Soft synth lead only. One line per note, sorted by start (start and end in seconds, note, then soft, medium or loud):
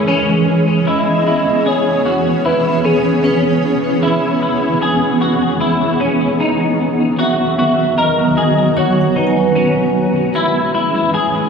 0.88 1.69 D#5 loud
1.68 2.47 C#5 loud
2.46 2.86 B4 medium
2.85 4.03 G#4 medium
7.20 8.00 E5 loud
7.98 8.79 D#5 loud
8.78 9.16 C#5 medium
9.17 10.31 B4 medium